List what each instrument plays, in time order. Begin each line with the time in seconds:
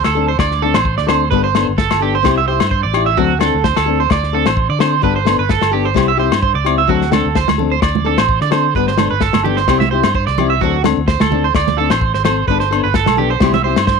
0.04 fingered electric bass D2, clean electric guitar A4, snare, low agogo
0.15 nylon-string guitar C4 D4 A4
0.28 clean electric guitar C5
0.39 fingered electric bass D2, clean electric guitar D5, kick, snare, low agogo
0.51 snare
0.62 nylon-string guitar C4 D4 A4, clean electric guitar A4
0.74 fingered electric bass A1, clean electric guitar C5, snare, low agogo
0.85 kick
0.98 fingered electric bass D2, clean electric guitar D5, snare
1.07 nylon-string guitar C4 D4 A4, clean electric guitar C5, snare, low agogo
1.31 fingered electric bass G1, nylon-string guitar G3 B3 D4 A4, clean electric guitar B4, kick
1.44 clean electric guitar C5
1.55 nylon-string guitar B3 D4 A4, snare, low agogo
1.69 fingered electric bass G1
1.78 clean electric guitar A4, kick, snare
1.91 fingered electric bass G1, snare, low agogo
2.00 nylon-string guitar B3 D4 A4, clean electric guitar G4
2.15 clean electric guitar C5
2.23 fingered electric bass C2, nylon-string guitar C4 E4 G4, kick, snare, low agogo
2.38 clean electric guitar E5
2.48 nylon-string guitar E4 G4, clean electric guitar C5
2.60 fingered electric bass G2, snare, low agogo
2.71 clean electric guitar C5, kick
2.83 fingered electric bass A1, clean electric guitar D5
2.93 nylon-string guitar E4 G4, low agogo
3.06 clean electric guitar E5
3.17 fingered electric bass D2, nylon-string guitar F#3 C4 D4 A4, clean electric guitar F#4, kick
3.40 nylon-string guitar C4 D4 A4, clean electric guitar A4, snare, low agogo
3.54 fingered electric bass D2
3.64 clean electric guitar C5, kick, snare
3.76 fingered electric bass D2, clean electric guitar A4, snare, low agogo
3.86 nylon-string guitar C4 D4 A4
4.00 clean electric guitar C5
4.10 fingered electric bass D2, clean electric guitar D5, kick, snare, low agogo
4.23 snare
4.33 nylon-string guitar C4 D4 A4, clean electric guitar A4
4.46 fingered electric bass A1, clean electric guitar C5, snare, low agogo
4.57 kick
4.69 fingered electric bass D3, clean electric guitar D5
4.79 nylon-string guitar C4 D4 A4, clean electric guitar C5, snare, low agogo
5.02 fingered electric bass G1, nylon-string guitar G3 B3 D4 A4, clean electric guitar B4, kick
5.16 clean electric guitar C5
5.25 nylon-string guitar B3 D4 A4, snare, low agogo
5.39 fingered electric bass G1, clean electric guitar B4
5.49 clean electric guitar A4, kick, snare
5.62 fingered electric bass G1, snare, low agogo
5.71 nylon-string guitar B3 D4 A4, clean electric guitar G4
5.85 clean electric guitar C5
5.94 fingered electric bass C2, nylon-string guitar G3 C4 E4 G4, kick, snare, low agogo
6.08 clean electric guitar E5
6.17 nylon-string guitar C4 E4 G4, clean electric guitar C5
6.31 fingered electric bass G2, snare, low agogo
6.42 clean electric guitar C5, kick
6.55 fingered electric bass C#2, clean electric guitar D5
6.64 nylon-string guitar C4 E4 G4, low agogo
6.78 clean electric guitar E5
6.87 fingered electric bass D2, nylon-string guitar F#3 C4 D4 A4, clean electric guitar F#4, kick
7.02 snare
7.11 nylon-string guitar C4 D4 A4, clean electric guitar A4, snare, high conga, low agogo
7.25 fingered electric bass D2
7.35 clean electric guitar C5, kick, snare
7.48 fingered electric bass D2, muted clean electric guitar stroke, snare, high conga, low agogo
7.58 nylon-string guitar C4 D4 A4, low conga
7.71 clean electric guitar C5
7.82 fingered electric bass D2, clean electric guitar D5, kick, snare, low agogo
7.95 high conga, low conga
8.05 nylon-string guitar C4 D4 A4, clean electric guitar A4
8.18 fingered electric bass A1, clean electric guitar C5, snare, low agogo
8.29 kick
8.41 fingered electric bass D3, clean electric guitar D5, snare
8.51 nylon-string guitar C4 D4 A4, clean electric guitar C5, snare, low agogo
8.75 fingered electric bass G1, nylon-string guitar G3 B3 D4, clean electric guitar B4, muted nylon-string guitar stroke, kick
8.87 clean electric guitar C5, snare
8.98 nylon-string guitar B3 D4 A4, snare, high conga, low agogo
9.11 fingered electric bass G1, clean electric guitar B4
9.21 clean electric guitar A4, kick, snare
9.33 fingered electric bass G1, snare, high conga, low agogo
9.44 nylon-string guitar B3 D4 A4, clean electric guitar G4, low conga
9.57 clean electric guitar C5, snare
9.68 fingered electric bass C2, nylon-string guitar G3 C4 E4 G4, kick, snare, low agogo
9.80 clean electric guitar E5, snare, high conga
9.91 nylon-string guitar E4 G4, clean electric guitar C5
9.95 nylon-string guitar C4
10.04 fingered electric bass G2, snare, low agogo
10.15 clean electric guitar C5, kick
10.27 fingered electric bass C2, clean electric guitar D5, snare
10.38 nylon-string guitar C4 E4 G4, low conga, low agogo
10.50 clean electric guitar E5
10.61 fingered electric bass D2, nylon-string guitar F#3 C4 D4 A4, clean electric guitar F#4, kick
10.84 nylon-string guitar C4 D4 A4, muted clean electric guitar stroke, snare, high conga, low agogo
10.97 fingered electric bass D2
11.08 clean electric guitar C5, kick, snare
11.20 fingered electric bass D2, clean electric guitar A4, snare, high conga, low agogo
11.30 nylon-string guitar C4 D4 A4, low conga
11.44 clean electric guitar C5
11.55 fingered electric bass D2, clean electric guitar D5, kick, snare, low agogo
11.67 snare, high conga, low conga
11.78 nylon-string guitar C4 D4 A4, clean electric guitar A4
11.90 fingered electric bass A1, clean electric guitar C5, snare, low agogo
12.01 kick
12.14 fingered electric bass G#1, clean electric guitar C5, snare
12.24 nylon-string guitar C4 A4, clean electric guitar C5, muted nylon-string guitar stroke, snare, low conga, low agogo
12.48 fingered electric bass G1, nylon-string guitar G3 B3 D4 A4, clean electric guitar B4, kick
12.60 clean electric guitar C5, snare
12.71 nylon-string guitar B3 D4 A4, low agogo
12.84 fingered electric bass G1, clean electric guitar B4
12.94 clean electric guitar A4, kick, snare
13.06 fingered electric bass B1, snare, high conga, low agogo
13.17 nylon-string guitar B3 D4 A4, clean electric guitar G4, low conga
13.30 clean electric guitar C5
13.40 fingered electric bass C2, nylon-string guitar G3 C4 E4 G4, kick, snare, high conga, low agogo
13.53 clean electric guitar E5, snare, high conga, low conga
13.64 nylon-string guitar C4 E4 G4, clean electric guitar C5
13.76 fingered electric bass G2, snare, low agogo
13.87 clean electric guitar C5, kick, snare